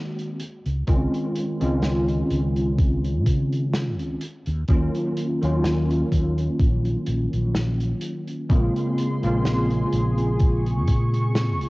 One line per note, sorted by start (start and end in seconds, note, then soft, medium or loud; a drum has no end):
0.00 0.37 D#3 medium
0.00 0.38 G#3 medium
0.00 0.38 A#3 medium
0.00 0.39 C4 medium
0.00 0.39 F#4 loud
0.19 closed hi-hat medium
0.40 closed hi-hat loud
0.66 0.81 C#2 medium
0.66 closed hi-hat medium
0.87 1.06 C#2 loud
0.87 1.55 D#3 medium
0.87 1.55 G#3 medium
0.87 1.55 C4 medium
0.87 1.56 C#4 medium
0.87 1.56 F4 loud
0.87 kick loud
0.87 closed hi-hat medium
1.14 closed hi-hat medium
1.36 closed hi-hat medium
1.61 2.21 C#2 medium
1.61 4.18 D#3 medium
1.61 4.19 G#3 medium
1.61 4.19 C4 medium
1.61 4.20 C#4 medium
1.61 4.20 F4 loud
1.61 closed hi-hat medium
1.82 snare loud
1.82 closed hi-hat medium
2.08 closed hi-hat medium
2.30 3.26 C#2 loud
2.30 closed hi-hat medium
2.56 closed hi-hat medium
2.78 kick loud
2.78 closed hi-hat medium
3.04 closed hi-hat medium
3.26 3.99 C#3 medium
3.26 kick medium
3.26 closed hi-hat loud
3.52 closed hi-hat medium
3.73 snare loud
3.73 closed hi-hat medium
3.99 4.15 C#2 medium
3.99 closed hi-hat medium
4.21 closed hi-hat loud
4.46 4.62 D#2 loud
4.46 closed hi-hat medium
4.68 4.87 D#2 loud
4.68 5.36 D#3 medium
4.68 5.37 F#3 medium
4.68 5.37 A#3 medium
4.68 5.37 C#4 medium
4.68 5.37 F4 loud
4.68 kick loud
4.68 closed hi-hat medium
4.95 closed hi-hat medium
5.17 closed hi-hat medium
5.42 6.02 D#2 medium
5.42 8.44 D#3 medium
5.42 8.45 F#3 medium
5.42 8.45 A#3 medium
5.42 8.46 C#4 medium
5.42 8.46 F4 loud
5.42 closed hi-hat medium
5.64 snare loud
5.64 closed hi-hat medium
5.90 closed hi-hat medium
6.12 6.46 D#2 loud
6.12 kick medium
6.12 closed hi-hat loud
6.38 closed hi-hat medium
6.59 6.94 A#1 medium
6.59 kick loud
6.59 closed hi-hat medium
6.85 closed hi-hat soft
7.06 7.25 A#1 medium
7.06 closed hi-hat medium
7.33 7.92 A#1 medium
7.33 closed hi-hat medium
7.55 snare loud
7.55 closed hi-hat medium
7.80 closed hi-hat medium
8.01 closed hi-hat loud
8.28 closed hi-hat medium
8.49 8.68 A#1 loud
8.49 9.17 C#3 loud
8.49 9.17 G#3 medium
8.49 9.17 A#3 medium
8.49 9.18 C4 medium
8.49 9.18 F4 loud
8.49 11.69 G#4 medium
8.49 10.38 C6 medium
8.49 kick loud
8.49 closed hi-hat medium
8.76 closed hi-hat soft
8.98 closed hi-hat medium
9.22 9.82 A#1 medium
9.22 11.69 C#3 medium
9.22 11.69 G#3 medium
9.22 11.69 A#3 medium
9.22 11.69 C4 medium
9.22 11.69 F4 loud
9.22 closed hi-hat medium
9.45 snare loud
9.45 closed hi-hat medium
9.70 closed hi-hat medium
9.92 10.88 A#1 medium
9.92 closed hi-hat medium
10.18 closed hi-hat medium
10.40 11.69 C#6 medium
10.40 kick loud
10.40 closed hi-hat medium
10.66 closed hi-hat medium
10.87 11.62 A#2 medium
10.87 kick medium
10.87 closed hi-hat medium
11.14 closed hi-hat medium
11.35 snare loud
11.35 closed hi-hat medium
11.61 11.69 A#1 medium
11.61 closed hi-hat medium